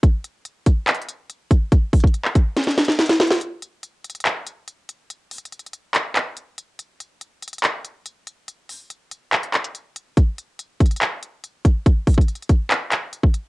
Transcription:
0.03 kick, closed hi-hat
0.24 closed hi-hat
0.45 closed hi-hat
0.66 kick, closed hi-hat
0.88 clap, closed hi-hat
0.95 closed hi-hat
1.02 closed hi-hat
1.09 closed hi-hat
1.30 closed hi-hat
1.51 kick, closed hi-hat
1.72 kick, closed hi-hat
1.93 kick, closed hi-hat, open hi-hat
2.00 kick, closed hi-hat
2.07 closed hi-hat
2.14 closed hi-hat
2.25 clap
2.35 kick, closed hi-hat
2.57 snare, closed hi-hat
2.64 snare, closed hi-hat
2.71 closed hi-hat
2.78 snare, closed hi-hat
2.85 snare, closed hi-hat
2.92 closed hi-hat
2.99 snare, closed hi-hat
3.06 snare, closed hi-hat
3.09 closed hi-hat
3.13 closed hi-hat
3.20 snare, closed hi-hat
3.27 snare, closed hi-hat
3.34 closed hi-hat
3.41 closed hi-hat
3.62 closed hi-hat
3.83 closed hi-hat
4.04 closed hi-hat
4.10 closed hi-hat
4.15 closed hi-hat
4.20 closed hi-hat
4.25 clap, closed hi-hat
4.47 closed hi-hat
4.68 closed hi-hat
4.89 closed hi-hat
5.10 closed hi-hat
5.31 closed hi-hat, open hi-hat
5.38 closed hi-hat
5.45 closed hi-hat
5.52 closed hi-hat
5.59 closed hi-hat
5.66 closed hi-hat
5.73 closed hi-hat
5.95 clap, closed hi-hat
6.16 clap, closed hi-hat
6.37 closed hi-hat
6.58 closed hi-hat
6.79 closed hi-hat
7.00 closed hi-hat
7.21 closed hi-hat
7.42 closed hi-hat
7.48 closed hi-hat
7.53 closed hi-hat
7.58 closed hi-hat
7.64 clap, closed hi-hat
7.85 closed hi-hat
8.06 closed hi-hat
8.27 closed hi-hat
8.48 closed hi-hat
8.69 open hi-hat
8.90 closed hi-hat
9.11 closed hi-hat
9.33 clap, closed hi-hat
9.43 closed hi-hat
9.54 clap, closed hi-hat
9.64 closed hi-hat
9.75 closed hi-hat
9.96 closed hi-hat
10.17 kick, closed hi-hat
10.38 closed hi-hat
10.59 closed hi-hat
10.80 kick, closed hi-hat
10.86 closed hi-hat
10.91 closed hi-hat
10.96 closed hi-hat
11.02 clap, closed hi-hat
11.23 closed hi-hat
11.44 closed hi-hat
11.65 kick, closed hi-hat
11.86 kick, closed hi-hat
12.07 kick, closed hi-hat, open hi-hat
12.14 kick, closed hi-hat
12.21 closed hi-hat
12.28 closed hi-hat
12.35 closed hi-hat
12.42 closed hi-hat
12.49 kick, closed hi-hat
12.71 clap, closed hi-hat
12.92 clap, closed hi-hat
13.13 closed hi-hat
13.23 kick
13.34 closed hi-hat

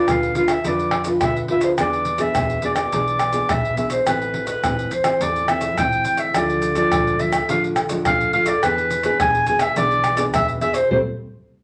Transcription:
Already playing: D4 F4 B4 D5
0.08 D2 D3 F5, pandeiro, tamborim, maracas, surdo
0.23 pandeiro, maracas
0.35 D4 F4 B4 F5, pandeiro, maracas
0.48 E5, pandeiro, tamborim, maracas, surdo
0.64 F2 D3 D4 F4 B4 D5, pandeiro, maracas, surdo
0.79 pandeiro, maracas
0.91 pandeiro, tamborim
1.04 D4 F4 B4, pandeiro, maracas, surdo
1.21 D2 D3 E5, pandeiro, tamborim, maracas, surdo
1.36 pandeiro, maracas, surdo
1.48 D4 F4 B4 E5, pandeiro, surdo
1.61 C5, pandeiro, maracas
1.78 E2 E3 B3 D4 G#4 D5, pandeiro, tamborim, maracas, surdo
1.93 pandeiro, maracas
2.05 pandeiro, maracas
2.18 B3 D4 G#4 E5, pandeiro, maracas, surdo
2.35 E2 B2, pandeiro, tamborim, maracas, surdo
2.50 pandeiro, maracas
2.62 B3 D4 G#4 D5, pandeiro, maracas
2.76 D5, pandeiro, tamborim, maracas, surdo
2.92 B1 E3 B3 D4 G#4, pandeiro, maracas, surdo
3.08 pandeiro, maracas
3.19 pandeiro, tamborim, maracas
3.33 B3 D4 G#4, pandeiro, maracas, surdo
3.49 B1 B2 E5, pandeiro, tamborim, maracas, surdo
3.65 pandeiro, maracas, surdo
3.77 B3 D4 G#4 E5, pandeiro, maracas, surdo
3.90 C5, pandeiro, maracas
4.06 A1 A2 E3 C4 E4 B4, pandeiro, tamborim, maracas, surdo
4.22 pandeiro, maracas
4.34 pandeiro
4.47 B4, pandeiro, maracas, surdo
4.63 A1 E3 C4 E4, pandeiro, tamborim, maracas, surdo
4.79 pandeiro, maracas
4.91 C5, pandeiro, maracas
5.04 E3 C4 E4, pandeiro, tamborim, maracas, surdo
5.20 E2 A2 D5, pandeiro, maracas, surdo
5.36 pandeiro, maracas
5.48 E3 C4 E4 E5, pandeiro, tamborim, maracas
5.61 pandeiro, maracas, surdo
5.77 A2 E3 C4 E4 G5, pandeiro, tamborim, maracas, surdo
5.92 pandeiro, maracas, surdo
6.05 G5, pandeiro, maracas, surdo
6.17 E5, pandeiro, maracas
6.34 D2 D3 F3 A3 D4 D5, pandeiro, tamborim, maracas, surdo
6.50 pandeiro, maracas
6.62 pandeiro, maracas
6.75 F3 A3 D4 D5, pandeiro, maracas, surdo
6.92 D2 A2, pandeiro, tamborim, maracas, surdo
7.07 pandeiro, maracas
7.19 F3 A3 D4 E5, pandeiro, maracas
7.32 pandeiro, tamborim, maracas, surdo
7.48 A1 D3 F3 A3 D4 F5, pandeiro, maracas, surdo
7.64 pandeiro, maracas
7.76 pandeiro, tamborim, maracas
7.89 F3 A3 D4, pandeiro, maracas, surdo
8.05 D2 A2 F5, pandeiro, tamborim, maracas, surdo
8.21 pandeiro, maracas, surdo
8.33 F3 A3 D4 F5, pandeiro, surdo
8.46 D5, pandeiro, maracas
8.62 E2 E3 B3 D4 G#4 B4, pandeiro, tamborim, maracas, surdo
8.78 pandeiro, maracas
8.90 pandeiro, maracas
9.03 B3 D4 G#4 B4, pandeiro, maracas, surdo
9.20 E2 B2 G#5, pandeiro, tamborim, maracas, surdo
9.35 pandeiro, maracas
9.46 B3 D4 G#4 G#5, pandeiro, maracas
9.59 E5, pandeiro, tamborim, maracas, surdo
9.76 B1 E3 B3 D4 G#4 D5, pandeiro, maracas, surdo
9.91 pandeiro, maracas
10.04 pandeiro, tamborim, maracas
10.17 B3 D4 G#4 D5, pandeiro, maracas, surdo
10.33 E2 B2 E5, pandeiro, tamborim, maracas, surdo
10.48 pandeiro, maracas, surdo
10.61 B3 D4 G#4 E5, pandeiro, maracas, surdo
10.74 C5, pandeiro, maracas
10.90 A1 G3 A3 C4 C5, surdo

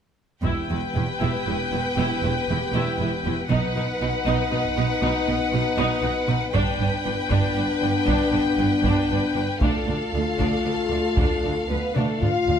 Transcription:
0.42 E1 E2 B3 E4 G4 B4 G5, taiko
0.69 E1 E2 E4
0.95 E1 E2 E4
1.19 E1 E2 E4
1.46 E1 E2 E4
1.71 E1 E2 E4
1.97 E1 E2 E4
2.22 E1 E2 E4
2.48 E1 E2 E4
2.73 E1 E2 E4
2.99 E1 E2 E4
3.25 E1 E2 E4
3.49 B1 B2 B3 D#4 B4 F#5, taiko
3.75 B1 B2 D#4
4.01 B1 B2 D#4
4.26 B1 B2 D#4
4.51 B1 B2 D#4
4.65 taiko
4.77 B1 B2 D#4
5.02 B1 B2 D#4
5.27 B1 B2 D#4
5.52 B1 B2 D#4
5.77 B1 B2 D#4
6.03 B1 B2 D#4
6.28 B1 B2 D#4
6.52 G1 G2 B3 D4 B4 G5, taiko
6.80 G1 G2 D4
7.05 G1 G2 D4
7.30 G1 G2 D4, taiko
7.56 G1 G2 D4
7.82 G1 G2 D4
8.07 G1 G2 D4, taiko
8.33 G1 G2 D4
8.58 G1 G2 D4
8.84 G1 G2 D4, taiko
9.10 G1 G2 D4
9.35 G1 G2 D4
9.61 D2 A3 D4 F4 A4 F5, taiko
9.86 D2 D4
10.13 D2 D4
10.38 D2 D4, taiko
10.65 D2 D4
10.91 D2 D4
11.17 D2 D4, taiko
11.43 D2 D4
11.68 D2 B3 D4 B4
11.94 D2 A3 D4 A4, taiko mid
12.20 D2 D4 F4 F5, taiko low-mid
12.47 D2 D4, taiko low

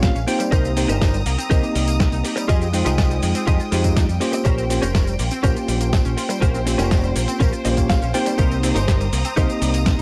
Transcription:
Already playing: A#1 A#3 C#4 F4 G4 C#5 F5
0.03 C4 F5, kick, snare, closed hi-hat, tambourine, shaker
0.15 A#1 C#4, tambourine, shaker
0.27 A#3 C4 D#4 F4 G4 C5 G5, muted clean electric guitar stroke, open hi-hat, shaker
0.39 G3, muted clean electric guitar stroke, closed hi-hat, tambourine, shaker
0.51 C2 G3 D#4 G4 A#4 C5 A#5 D#6, kick, closed hi-hat, tambourine, shaker
0.65 C4, tambourine, shaker
0.77 A#3 C4 D#4 G4 C5, open hi-hat, shaker
0.88 G1 D#4 G4 A#4 C5, closed hi-hat, tambourine, shaker
1.01 G4, kick, snare, closed hi-hat, tambourine, shaker
1.14 G3, tambourine, shaker
1.26 C2 A#3, open hi-hat, shaker
1.38 C4, closed hi-hat, tambourine, shaker
1.50 C2 A#3 C4 D#4 G4 A#4 C5 D#5, kick, closed hi-hat, tambourine, shaker
1.63 G4, tambourine, shaker
1.75 C2 G3, muted clean electric guitar stroke, open hi-hat, shaker
1.88 A#3, closed hi-hat, tambourine, shaker
2.00 C4, kick, snare, closed hi-hat, tambourine, shaker
2.12 C2 D#4, tambourine, shaker
2.24 G4, muted clean electric guitar stroke, open hi-hat, shaker
2.36 G3, muted clean electric guitar stroke, closed hi-hat, tambourine, shaker
2.48 F2 G3 G#3 F4 G4 G#4 D#5 G5 D#6, kick, closed hi-hat, tambourine, shaker
2.61 C4, tambourine, shaker
2.73 G#3 C4 D#4 F4 C5 G5, open hi-hat, shaker
2.85 C2 D#4 F4 G4 G#4 D#5, snare, closed hi-hat, tambourine, shaker
2.98 F4, kick, snare, closed hi-hat, tambourine, shaker
3.11 G3, tambourine, shaker
3.23 F2 G#3, open hi-hat, shaker
3.35 C4, closed hi-hat, tambourine, shaker
3.47 F2 D#4 F4 G4 G#4 D#5, kick, closed hi-hat, tambourine, shaker
3.60 F4, tambourine, shaker
3.71 F2 G3 G#3 D#4 F4 G4 C5, muted clean electric guitar stroke, open hi-hat, shaker
3.84 G#3 C4 D#4 F4 G4 D#5, kick, closed hi-hat, tambourine, shaker
3.96 D#4, kick, snare, closed hi-hat, tambourine, shaker
4.08 F2 G3, tambourine, shaker
4.20 A#3 C#4 F4 G4 C5, muted clean electric guitar stroke, open hi-hat, shaker
4.32 C4, muted clean electric guitar stroke, closed hi-hat, tambourine, shaker
4.45 A#1 G3 C#4 G4 A#4 C5, kick, closed hi-hat, tambourine, shaker
4.58 C4, tambourine, shaker
4.70 A#3 C4 C#4 F4 G4 C5, open hi-hat, shaker
4.82 F1 C#4 G4 A#4 C5, closed hi-hat, tambourine, shaker
4.95 F4, kick, snare, closed hi-hat, tambourine, shaker
5.07 G3, tambourine, shaker
5.19 A#1 A#3, open hi-hat, shaker
5.31 C4, closed hi-hat, tambourine, shaker
5.43 A#1 A#3 C#4 F4 G4 A#4 C5, kick, closed hi-hat, tambourine, shaker
5.56 F4, tambourine, shaker
5.68 A#1 G3, muted clean electric guitar stroke, open hi-hat, shaker
5.81 A#3, closed hi-hat, tambourine, shaker
5.93 C4, kick, snare, closed hi-hat, tambourine, shaker
6.05 A#1 C#4, tambourine, shaker
6.17 F4, muted clean electric guitar stroke, open hi-hat, shaker
6.29 G3, muted clean electric guitar stroke, closed hi-hat, tambourine, shaker
6.41 A#1 G3 C#4 G4 A#4 C5, kick, closed hi-hat, tambourine, shaker
6.54 C4, tambourine, shaker
6.66 A#3 C4 C#4 F4 G4 C5, open hi-hat, shaker
6.78 F1 C#4 G4 A#4 C5, snare, closed hi-hat, tambourine, shaker
6.91 F4, kick, snare, closed hi-hat, tambourine, shaker
7.03 G3, tambourine, shaker
7.16 A#1 A#3, open hi-hat, shaker
7.28 C4, closed hi-hat, tambourine, shaker
7.40 A#1 C#4 G4 A#4 C5, kick, closed hi-hat, tambourine, shaker
7.52 F4, tambourine, shaker
7.64 A#1 G3 A#3 C#4 F4 G4 C5 D#5, muted clean electric guitar stroke, open hi-hat, shaker
7.77 A#3 C#4 F4 G4 C#5, kick, closed hi-hat, tambourine, shaker
7.90 C4 F5, kick, snare, closed hi-hat, tambourine, shaker
8.02 A#1 C#4, tambourine, shaker
8.13 A#3 C4 D#4 F4 G4 C5 G5, muted clean electric guitar stroke, open hi-hat, shaker
8.26 G3, muted clean electric guitar stroke, closed hi-hat, tambourine, shaker
8.38 C2 G3 D#4 G4 A#4 C5 A#5 D#6, kick, closed hi-hat, tambourine, shaker
8.51 C4, tambourine, shaker
8.63 A#3 C4 D#4 G4 C5, open hi-hat, shaker
8.75 G1 D#4 G4 A#4 C5, closed hi-hat, tambourine, shaker
8.88 G4, kick, snare, closed hi-hat, tambourine, shaker
9.00 G3, tambourine, shaker
9.13 C2 A#3, open hi-hat, shaker
9.25 C4, closed hi-hat, tambourine, shaker
9.36 C2 A#3 C4 D#4 G4 A#4 C5 D#5, kick, closed hi-hat, tambourine, shaker
9.49 G4, tambourine, shaker
9.61 C2 G3, muted clean electric guitar stroke, open hi-hat, shaker
9.74 A#3, closed hi-hat, tambourine, shaker
9.86 C4, kick, snare, closed hi-hat, tambourine, shaker
9.99 C2 D#4, shaker

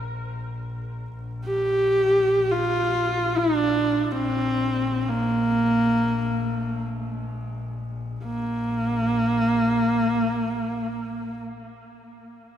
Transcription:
Already playing: A#1
1.15 A#1
1.45 G4
2.51 F4
3.37 D4
4.12 C4
5.09 A#3
8.24 A#1 A#3

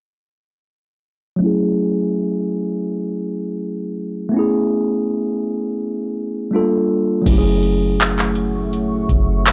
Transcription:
1.36 F#3 A3
1.41 C#4 E4
1.46 G#4
4.29 A3 B3
4.34 C#4 E4
4.39 G#4
6.51 G3 A3 D4 F4
6.56 A#3 A4
7.22 F#3 A3
7.26 F#1 A3 C#4 E4 E5 F#5 C#6, kick, closed hi-hat, crash
7.32 G4
7.38 G#4
7.63 closed hi-hat
8.00 clap, closed hi-hat
8.19 clap
8.35 closed hi-hat
8.73 closed hi-hat
9.09 F#1, kick, closed hi-hat
9.46 clap, closed hi-hat

